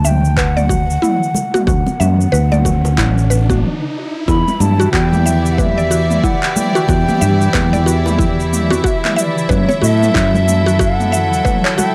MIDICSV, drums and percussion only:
0, 0, Header, 1, 2, 480
1, 0, Start_track
1, 0, Key_signature, 1, "minor"
1, 0, Tempo, 652174
1, 1231, Time_signature, 4, 2, 24, 8
1, 8794, End_track
2, 0, Start_track
2, 0, Title_t, "Drums"
2, 35, Note_on_c, 9, 45, 75
2, 37, Note_on_c, 9, 69, 73
2, 108, Note_off_c, 9, 45, 0
2, 111, Note_off_c, 9, 69, 0
2, 182, Note_on_c, 9, 69, 30
2, 256, Note_off_c, 9, 69, 0
2, 271, Note_on_c, 9, 36, 94
2, 277, Note_on_c, 9, 39, 80
2, 280, Note_on_c, 9, 69, 44
2, 344, Note_off_c, 9, 36, 0
2, 351, Note_off_c, 9, 39, 0
2, 353, Note_off_c, 9, 69, 0
2, 421, Note_on_c, 9, 45, 73
2, 423, Note_on_c, 9, 69, 19
2, 494, Note_off_c, 9, 45, 0
2, 497, Note_off_c, 9, 69, 0
2, 511, Note_on_c, 9, 36, 88
2, 519, Note_on_c, 9, 69, 67
2, 585, Note_off_c, 9, 36, 0
2, 593, Note_off_c, 9, 69, 0
2, 665, Note_on_c, 9, 69, 32
2, 739, Note_off_c, 9, 69, 0
2, 761, Note_on_c, 9, 45, 79
2, 764, Note_on_c, 9, 69, 39
2, 835, Note_off_c, 9, 45, 0
2, 837, Note_off_c, 9, 69, 0
2, 907, Note_on_c, 9, 69, 20
2, 980, Note_off_c, 9, 69, 0
2, 990, Note_on_c, 9, 64, 78
2, 999, Note_on_c, 9, 69, 69
2, 1064, Note_off_c, 9, 64, 0
2, 1073, Note_off_c, 9, 69, 0
2, 1135, Note_on_c, 9, 60, 46
2, 1141, Note_on_c, 9, 45, 75
2, 1143, Note_on_c, 9, 69, 29
2, 1208, Note_off_c, 9, 60, 0
2, 1214, Note_off_c, 9, 45, 0
2, 1217, Note_off_c, 9, 69, 0
2, 1232, Note_on_c, 9, 36, 120
2, 1237, Note_on_c, 9, 60, 48
2, 1239, Note_on_c, 9, 69, 39
2, 1305, Note_off_c, 9, 36, 0
2, 1310, Note_off_c, 9, 60, 0
2, 1313, Note_off_c, 9, 69, 0
2, 1373, Note_on_c, 9, 63, 79
2, 1373, Note_on_c, 9, 64, 78
2, 1380, Note_on_c, 9, 69, 19
2, 1446, Note_off_c, 9, 63, 0
2, 1446, Note_off_c, 9, 64, 0
2, 1453, Note_off_c, 9, 69, 0
2, 1478, Note_on_c, 9, 45, 71
2, 1481, Note_on_c, 9, 69, 73
2, 1551, Note_off_c, 9, 45, 0
2, 1554, Note_off_c, 9, 69, 0
2, 1624, Note_on_c, 9, 69, 31
2, 1698, Note_off_c, 9, 69, 0
2, 1722, Note_on_c, 9, 69, 41
2, 1796, Note_off_c, 9, 69, 0
2, 1852, Note_on_c, 9, 64, 76
2, 1854, Note_on_c, 9, 63, 61
2, 1859, Note_on_c, 9, 45, 77
2, 1862, Note_on_c, 9, 69, 20
2, 1926, Note_off_c, 9, 64, 0
2, 1928, Note_off_c, 9, 63, 0
2, 1933, Note_off_c, 9, 45, 0
2, 1935, Note_off_c, 9, 69, 0
2, 1951, Note_on_c, 9, 36, 55
2, 1956, Note_on_c, 9, 60, 53
2, 1956, Note_on_c, 9, 69, 77
2, 2025, Note_off_c, 9, 36, 0
2, 2029, Note_off_c, 9, 60, 0
2, 2030, Note_off_c, 9, 69, 0
2, 2096, Note_on_c, 9, 60, 71
2, 2100, Note_on_c, 9, 69, 33
2, 2170, Note_off_c, 9, 60, 0
2, 2173, Note_off_c, 9, 69, 0
2, 2191, Note_on_c, 9, 36, 57
2, 2195, Note_on_c, 9, 39, 83
2, 2195, Note_on_c, 9, 45, 81
2, 2198, Note_on_c, 9, 69, 45
2, 2264, Note_off_c, 9, 36, 0
2, 2269, Note_off_c, 9, 39, 0
2, 2269, Note_off_c, 9, 45, 0
2, 2271, Note_off_c, 9, 69, 0
2, 2340, Note_on_c, 9, 69, 21
2, 2414, Note_off_c, 9, 69, 0
2, 2433, Note_on_c, 9, 63, 37
2, 2437, Note_on_c, 9, 69, 71
2, 2506, Note_off_c, 9, 63, 0
2, 2510, Note_off_c, 9, 69, 0
2, 2573, Note_on_c, 9, 36, 93
2, 2574, Note_on_c, 9, 63, 76
2, 2575, Note_on_c, 9, 45, 78
2, 2577, Note_on_c, 9, 69, 31
2, 2647, Note_off_c, 9, 36, 0
2, 2647, Note_off_c, 9, 63, 0
2, 2648, Note_off_c, 9, 45, 0
2, 2651, Note_off_c, 9, 69, 0
2, 3150, Note_on_c, 9, 36, 108
2, 3155, Note_on_c, 9, 69, 40
2, 3224, Note_off_c, 9, 36, 0
2, 3228, Note_off_c, 9, 69, 0
2, 3296, Note_on_c, 9, 63, 73
2, 3298, Note_on_c, 9, 69, 22
2, 3299, Note_on_c, 9, 64, 81
2, 3370, Note_off_c, 9, 63, 0
2, 3371, Note_off_c, 9, 69, 0
2, 3372, Note_off_c, 9, 64, 0
2, 3390, Note_on_c, 9, 45, 80
2, 3393, Note_on_c, 9, 69, 72
2, 3464, Note_off_c, 9, 45, 0
2, 3466, Note_off_c, 9, 69, 0
2, 3540, Note_on_c, 9, 69, 33
2, 3613, Note_off_c, 9, 69, 0
2, 3630, Note_on_c, 9, 36, 103
2, 3635, Note_on_c, 9, 39, 83
2, 3638, Note_on_c, 9, 69, 42
2, 3704, Note_off_c, 9, 36, 0
2, 3709, Note_off_c, 9, 39, 0
2, 3711, Note_off_c, 9, 69, 0
2, 3775, Note_on_c, 9, 64, 78
2, 3776, Note_on_c, 9, 45, 82
2, 3779, Note_on_c, 9, 69, 22
2, 3849, Note_off_c, 9, 64, 0
2, 3850, Note_off_c, 9, 45, 0
2, 3853, Note_off_c, 9, 69, 0
2, 3876, Note_on_c, 9, 69, 80
2, 3950, Note_off_c, 9, 69, 0
2, 4018, Note_on_c, 9, 69, 33
2, 4092, Note_off_c, 9, 69, 0
2, 4110, Note_on_c, 9, 36, 95
2, 4113, Note_on_c, 9, 45, 79
2, 4116, Note_on_c, 9, 69, 45
2, 4183, Note_off_c, 9, 36, 0
2, 4187, Note_off_c, 9, 45, 0
2, 4190, Note_off_c, 9, 69, 0
2, 4261, Note_on_c, 9, 69, 19
2, 4334, Note_off_c, 9, 69, 0
2, 4353, Note_on_c, 9, 69, 68
2, 4427, Note_off_c, 9, 69, 0
2, 4495, Note_on_c, 9, 45, 76
2, 4497, Note_on_c, 9, 69, 31
2, 4568, Note_off_c, 9, 45, 0
2, 4571, Note_off_c, 9, 69, 0
2, 4589, Note_on_c, 9, 36, 100
2, 4595, Note_on_c, 9, 69, 40
2, 4663, Note_off_c, 9, 36, 0
2, 4669, Note_off_c, 9, 69, 0
2, 4733, Note_on_c, 9, 39, 73
2, 4735, Note_on_c, 9, 69, 20
2, 4806, Note_off_c, 9, 39, 0
2, 4809, Note_off_c, 9, 69, 0
2, 4829, Note_on_c, 9, 45, 78
2, 4829, Note_on_c, 9, 64, 86
2, 4832, Note_on_c, 9, 69, 78
2, 4903, Note_off_c, 9, 45, 0
2, 4903, Note_off_c, 9, 64, 0
2, 4905, Note_off_c, 9, 69, 0
2, 4967, Note_on_c, 9, 60, 50
2, 4975, Note_on_c, 9, 69, 32
2, 5040, Note_off_c, 9, 60, 0
2, 5048, Note_off_c, 9, 69, 0
2, 5064, Note_on_c, 9, 60, 50
2, 5069, Note_on_c, 9, 36, 112
2, 5073, Note_on_c, 9, 69, 43
2, 5137, Note_off_c, 9, 60, 0
2, 5142, Note_off_c, 9, 36, 0
2, 5146, Note_off_c, 9, 69, 0
2, 5214, Note_on_c, 9, 63, 74
2, 5215, Note_on_c, 9, 45, 78
2, 5215, Note_on_c, 9, 64, 78
2, 5218, Note_on_c, 9, 69, 23
2, 5287, Note_off_c, 9, 63, 0
2, 5288, Note_off_c, 9, 64, 0
2, 5289, Note_off_c, 9, 45, 0
2, 5291, Note_off_c, 9, 69, 0
2, 5312, Note_on_c, 9, 69, 77
2, 5386, Note_off_c, 9, 69, 0
2, 5457, Note_on_c, 9, 69, 33
2, 5530, Note_off_c, 9, 69, 0
2, 5549, Note_on_c, 9, 36, 113
2, 5551, Note_on_c, 9, 39, 80
2, 5551, Note_on_c, 9, 45, 73
2, 5554, Note_on_c, 9, 69, 46
2, 5623, Note_off_c, 9, 36, 0
2, 5625, Note_off_c, 9, 39, 0
2, 5625, Note_off_c, 9, 45, 0
2, 5628, Note_off_c, 9, 69, 0
2, 5696, Note_on_c, 9, 64, 104
2, 5696, Note_on_c, 9, 69, 24
2, 5769, Note_off_c, 9, 69, 0
2, 5770, Note_off_c, 9, 64, 0
2, 5792, Note_on_c, 9, 60, 55
2, 5798, Note_on_c, 9, 69, 79
2, 5866, Note_off_c, 9, 60, 0
2, 5872, Note_off_c, 9, 69, 0
2, 5931, Note_on_c, 9, 60, 64
2, 5939, Note_on_c, 9, 45, 75
2, 5941, Note_on_c, 9, 69, 33
2, 6005, Note_off_c, 9, 60, 0
2, 6012, Note_off_c, 9, 45, 0
2, 6015, Note_off_c, 9, 69, 0
2, 6029, Note_on_c, 9, 36, 98
2, 6039, Note_on_c, 9, 69, 48
2, 6103, Note_off_c, 9, 36, 0
2, 6112, Note_off_c, 9, 69, 0
2, 6183, Note_on_c, 9, 69, 22
2, 6257, Note_off_c, 9, 69, 0
2, 6279, Note_on_c, 9, 45, 72
2, 6282, Note_on_c, 9, 69, 73
2, 6353, Note_off_c, 9, 45, 0
2, 6355, Note_off_c, 9, 69, 0
2, 6415, Note_on_c, 9, 63, 75
2, 6423, Note_on_c, 9, 69, 34
2, 6488, Note_off_c, 9, 63, 0
2, 6497, Note_off_c, 9, 69, 0
2, 6510, Note_on_c, 9, 36, 93
2, 6522, Note_on_c, 9, 69, 45
2, 6583, Note_off_c, 9, 36, 0
2, 6596, Note_off_c, 9, 69, 0
2, 6657, Note_on_c, 9, 60, 33
2, 6661, Note_on_c, 9, 39, 71
2, 6661, Note_on_c, 9, 45, 73
2, 6663, Note_on_c, 9, 69, 21
2, 6731, Note_off_c, 9, 60, 0
2, 6734, Note_off_c, 9, 39, 0
2, 6734, Note_off_c, 9, 45, 0
2, 6737, Note_off_c, 9, 69, 0
2, 6760, Note_on_c, 9, 69, 77
2, 6834, Note_off_c, 9, 69, 0
2, 6904, Note_on_c, 9, 69, 31
2, 6978, Note_off_c, 9, 69, 0
2, 6990, Note_on_c, 9, 36, 118
2, 6998, Note_on_c, 9, 45, 70
2, 7001, Note_on_c, 9, 69, 41
2, 7063, Note_off_c, 9, 36, 0
2, 7071, Note_off_c, 9, 45, 0
2, 7074, Note_off_c, 9, 69, 0
2, 7129, Note_on_c, 9, 63, 84
2, 7133, Note_on_c, 9, 64, 93
2, 7142, Note_on_c, 9, 69, 23
2, 7203, Note_off_c, 9, 63, 0
2, 7207, Note_off_c, 9, 64, 0
2, 7215, Note_off_c, 9, 69, 0
2, 7240, Note_on_c, 9, 69, 75
2, 7314, Note_off_c, 9, 69, 0
2, 7380, Note_on_c, 9, 45, 75
2, 7383, Note_on_c, 9, 69, 33
2, 7454, Note_off_c, 9, 45, 0
2, 7456, Note_off_c, 9, 69, 0
2, 7470, Note_on_c, 9, 36, 109
2, 7477, Note_on_c, 9, 39, 81
2, 7480, Note_on_c, 9, 69, 46
2, 7544, Note_off_c, 9, 36, 0
2, 7551, Note_off_c, 9, 39, 0
2, 7553, Note_off_c, 9, 69, 0
2, 7615, Note_on_c, 9, 64, 94
2, 7620, Note_on_c, 9, 69, 24
2, 7689, Note_off_c, 9, 64, 0
2, 7693, Note_off_c, 9, 69, 0
2, 7714, Note_on_c, 9, 45, 74
2, 7717, Note_on_c, 9, 69, 82
2, 7788, Note_off_c, 9, 45, 0
2, 7790, Note_off_c, 9, 69, 0
2, 7861, Note_on_c, 9, 69, 36
2, 7935, Note_off_c, 9, 69, 0
2, 7950, Note_on_c, 9, 36, 97
2, 7955, Note_on_c, 9, 69, 48
2, 8024, Note_off_c, 9, 36, 0
2, 8029, Note_off_c, 9, 69, 0
2, 8097, Note_on_c, 9, 45, 72
2, 8100, Note_on_c, 9, 69, 21
2, 8171, Note_off_c, 9, 45, 0
2, 8173, Note_off_c, 9, 69, 0
2, 8196, Note_on_c, 9, 69, 78
2, 8270, Note_off_c, 9, 69, 0
2, 8342, Note_on_c, 9, 69, 34
2, 8416, Note_off_c, 9, 69, 0
2, 8430, Note_on_c, 9, 36, 100
2, 8435, Note_on_c, 9, 45, 74
2, 8437, Note_on_c, 9, 69, 46
2, 8504, Note_off_c, 9, 36, 0
2, 8508, Note_off_c, 9, 45, 0
2, 8511, Note_off_c, 9, 69, 0
2, 8576, Note_on_c, 9, 39, 72
2, 8578, Note_on_c, 9, 69, 20
2, 8649, Note_off_c, 9, 39, 0
2, 8652, Note_off_c, 9, 69, 0
2, 8675, Note_on_c, 9, 69, 82
2, 8676, Note_on_c, 9, 64, 99
2, 8748, Note_off_c, 9, 69, 0
2, 8750, Note_off_c, 9, 64, 0
2, 8794, End_track
0, 0, End_of_file